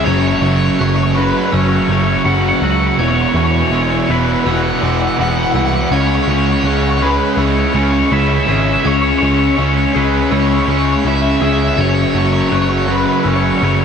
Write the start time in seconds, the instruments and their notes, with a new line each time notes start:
0.00 overdriven electric guitar E5
0.04 tine electric piano F#1, overdriven electric guitar F#2 C#3 F#3 C#5, clean electric guitar F#2, glockenspiel G#6
0.12 overdriven electric guitar C#5
0.20 overdriven electric guitar C#5
0.28 overdriven electric guitar C#5
0.35 overdriven electric guitar C#5
0.42 tine electric piano F#1, overdriven electric guitar F#2 C#3 F#3 C#5, clean electric guitar F#3
0.49 overdriven electric guitar C#5
0.57 overdriven electric guitar C#5
0.65 overdriven electric guitar C#5
0.72 overdriven electric guitar C#5
0.79 tine electric piano F#1, overdriven electric guitar F#2 C#3 F#3 C#5, clean electric guitar A3, glockenspiel F#6
0.88 overdriven electric guitar C#5
0.96 overdriven electric guitar C#5
1.03 overdriven electric guitar C#5
1.12 overdriven electric guitar F#2 C#3 B4 C#5
1.16 overdriven electric guitar F#3, clean electric guitar F#4
1.23 overdriven electric guitar B4
1.30 overdriven electric guitar B4
1.37 overdriven electric guitar B4
1.46 overdriven electric guitar B4
1.52 tine electric piano F#1, overdriven electric guitar F#2 C#3 F#3 C#5, clean electric guitar C#4, glockenspiel E6
1.62 overdriven electric guitar C#5
1.69 overdriven electric guitar C#5
1.76 overdriven electric guitar C#5
1.83 overdriven electric guitar C#5
1.88 tine electric piano F#1, overdriven electric guitar F#2 C#3 F#3 C#5, clean electric guitar A3, glockenspiel C#6
2.00 overdriven electric guitar C#5
2.07 overdriven electric guitar C#5
2.14 overdriven electric guitar C#5
2.24 tine electric piano F#1, overdriven electric guitar F#2 C#3 F#3 F#5, clean electric guitar C#4
2.33 overdriven electric guitar F#5
2.41 overdriven electric guitar F#5
2.49 overdriven electric guitar F#5
2.56 overdriven electric guitar F#5
2.61 tine electric piano C#2, overdriven electric guitar F#2 C#3 F#3 F#5, clean electric guitar F#4, glockenspiel E6
2.71 overdriven electric guitar F#5
2.80 overdriven electric guitar F#5
2.87 overdriven electric guitar F#5
2.98 tine electric piano E1, overdriven electric guitar E2 B2 E3 C#5, clean electric guitar E2, glockenspiel G#6
3.08 overdriven electric guitar C#5
3.15 overdriven electric guitar C#5
3.22 overdriven electric guitar C#5
3.29 overdriven electric guitar C#5
3.34 tine electric piano E2, overdriven electric guitar E2 B2 E3 C#5, clean electric guitar E3
3.45 overdriven electric guitar C#5
3.51 overdriven electric guitar C#5
3.59 overdriven electric guitar C#5
3.68 tine electric piano E1, overdriven electric guitar C#5
3.72 overdriven electric guitar E2 B2 E3 C#5, clean electric guitar G#3, glockenspiel E6
3.83 overdriven electric guitar C#5
3.90 overdriven electric guitar C#5
3.97 overdriven electric guitar C#5
4.04 overdriven electric guitar C#5
4.08 tine electric piano E1, overdriven electric guitar E2 B2 E3 B4, clean electric guitar E4
4.18 overdriven electric guitar B4
4.26 overdriven electric guitar B4
4.32 overdriven electric guitar B4
4.40 overdriven electric guitar B4
4.44 tine electric piano E1, overdriven electric guitar E2 B2 E3 F#5, clean electric guitar B3, glockenspiel E6
4.55 overdriven electric guitar F#5
4.63 overdriven electric guitar F#5
4.70 overdriven electric guitar F#5
4.79 tine electric piano E1, overdriven electric guitar E2 F#5, clean electric guitar G#3, glockenspiel D6
4.83 overdriven electric guitar B2 E3 F#5
4.93 overdriven electric guitar F#5
5.01 overdriven electric guitar F#5
5.08 overdriven electric guitar F#5
5.17 tine electric piano E1, overdriven electric guitar E2 B2 E3 F#5, clean electric guitar B3
5.29 overdriven electric guitar F#5
5.37 overdriven electric guitar F#5
5.43 overdriven electric guitar F#5
5.51 tine electric piano C2, overdriven electric guitar F#5, glockenspiel E6
5.56 overdriven electric guitar E2 B2 E3 F#5, clean electric guitar E4
5.66 overdriven electric guitar F#5
5.73 overdriven electric guitar F#5
5.81 overdriven electric guitar F#5
5.88 tine electric piano C#2, overdriven electric guitar C#3 F#5, clean electric guitar C#3, glockenspiel G#6
5.93 overdriven electric guitar G#3 C#4 C#5
6.00 overdriven electric guitar C#5
6.07 overdriven electric guitar C#5
6.15 overdriven electric guitar C#5
6.24 overdriven electric guitar C#5
6.28 tine electric piano C#2, overdriven electric guitar C#3 G#3 C#4 C#5, clean electric guitar G#3
6.38 overdriven electric guitar C#5
6.45 overdriven electric guitar C#5
6.52 overdriven electric guitar C#5
6.60 tine electric piano C#2, overdriven electric guitar C#5
6.64 overdriven electric guitar C#3 G#3 C#4 C#5, clean electric guitar C#4, glockenspiel F#6
6.76 overdriven electric guitar C#5
6.82 overdriven electric guitar C#5
6.91 overdriven electric guitar C#5
6.98 overdriven electric guitar C#3 C#5, clean electric guitar G#4
7.02 overdriven electric guitar G#3 C#4 B4
7.10 overdriven electric guitar B4
7.18 overdriven electric guitar B4
7.24 overdriven electric guitar B4
7.33 overdriven electric guitar B4
7.37 tine electric piano C#2, overdriven electric guitar C#3 G#3 C#4 C#5, clean electric guitar E4, glockenspiel E6
7.45 overdriven electric guitar C#5
7.52 overdriven electric guitar C#5
7.60 overdriven electric guitar C#5
7.68 overdriven electric guitar C#5
7.74 tine electric piano C#2, overdriven electric guitar C#3 G#3 C#4 C#5, clean electric guitar C#4, glockenspiel C#6
7.84 overdriven electric guitar C#5
7.90 overdriven electric guitar C#5
7.99 overdriven electric guitar C#5
8.06 overdriven electric guitar C#5
8.11 tine electric piano C#2, overdriven electric guitar C#3 G#3 C#4 E5, clean electric guitar E4
8.20 overdriven electric guitar E5
8.28 overdriven electric guitar E5
8.35 overdriven electric guitar E5
8.43 overdriven electric guitar E5
8.47 tine electric piano G#1, overdriven electric guitar C#3 G#3 C#4, clean electric guitar G#4, glockenspiel E6
8.52 overdriven electric guitar E5
8.58 overdriven electric guitar E5
8.65 overdriven electric guitar E5
8.73 overdriven electric guitar E5
8.80 overdriven electric guitar E5
8.84 tine electric piano C#2, overdriven electric guitar C#3 G#3 C#4 C#5, clean electric guitar C#3, glockenspiel G#6
8.94 overdriven electric guitar C#5
9.02 overdriven electric guitar C#5
9.09 overdriven electric guitar C#5
9.18 tine electric piano C#2, overdriven electric guitar C#3 G#3 C#4 C#5, clean electric guitar G#3
9.25 overdriven electric guitar C#5
9.32 overdriven electric guitar C#5
9.39 overdriven electric guitar C#5
9.48 overdriven electric guitar C#5
9.55 overdriven electric guitar C#3 G#3 C#4 C#5, clean electric guitar C#4, glockenspiel E6
9.59 tine electric piano C#2, overdriven electric guitar C#5
9.69 overdriven electric guitar C#5
9.77 overdriven electric guitar C#5
9.85 overdriven electric guitar C#5
9.92 tine electric piano C#2, overdriven electric guitar C#3 G#3 C#4 B4 C#5, clean electric guitar G#4
10.04 overdriven electric guitar B4
10.14 overdriven electric guitar B4
10.21 overdriven electric guitar B4
10.29 tine electric piano C#2, overdriven electric guitar C#3 G#3 C#4 C#5, clean electric guitar E4, glockenspiel E6
10.40 overdriven electric guitar C#5
10.46 overdriven electric guitar C#5
10.55 overdriven electric guitar C#5
10.63 overdriven electric guitar C#3 C#5
10.67 tine electric piano C#2, overdriven electric guitar G#3 C#4 C#5, clean electric guitar C#4, glockenspiel C#6
10.77 overdriven electric guitar C#5
10.85 overdriven electric guitar C#5
10.93 overdriven electric guitar C#5
11.00 overdriven electric guitar C#5
11.04 tine electric piano C#2, overdriven electric guitar C#3 G#3 C#4 E5, clean electric guitar E4
11.15 overdriven electric guitar E5
11.22 overdriven electric guitar E5
11.30 overdriven electric guitar E5
11.37 overdriven electric guitar C#3 G#3 E5
11.41 tine electric piano C#2, overdriven electric guitar C#4 E5, clean electric guitar G#4, glockenspiel E6
11.53 overdriven electric guitar E5
11.59 overdriven electric guitar E5
11.68 overdriven electric guitar E5
11.74 tine electric piano F#1, overdriven electric guitar F#2 C#3 F#3 E5
11.78 clean electric guitar F#2, overdriven electric guitar C#5, glockenspiel G#6
11.89 overdriven electric guitar C#5
11.95 overdriven electric guitar C#5
12.02 overdriven electric guitar C#5
12.11 tine electric piano F#1, overdriven electric guitar F#2 C#3 F#3 C#5, clean electric guitar F#3
12.18 overdriven electric guitar C#5
12.26 overdriven electric guitar C#5
12.33 overdriven electric guitar C#5
12.41 overdriven electric guitar C#5
12.48 tine electric piano F#1, overdriven electric guitar F#2 C#3 F#3 C#5, clean electric guitar A3, glockenspiel F#6
12.56 overdriven electric guitar C#5
12.62 overdriven electric guitar C#5
12.69 overdriven electric guitar C#5
12.77 overdriven electric guitar C#5
12.86 overdriven electric guitar F#2 C#3 F#3 C#5, clean electric guitar F#4
12.91 overdriven electric guitar B4
12.98 overdriven electric guitar B4
13.06 overdriven electric guitar B4
13.13 overdriven electric guitar B4
13.20 overdriven electric guitar B4
13.24 tine electric piano F#1, overdriven electric guitar F#2 C#3 F#3 C#5, clean electric guitar C#4, glockenspiel E6
13.36 overdriven electric guitar C#5
13.43 overdriven electric guitar C#5
13.50 overdriven electric guitar C#5
13.58 tine electric piano F#1, overdriven electric guitar F#2 C#3 F#3 C#5, clean electric guitar A3, glockenspiel C#6
13.65 overdriven electric guitar C#5
13.73 overdriven electric guitar C#5
13.81 overdriven electric guitar C#5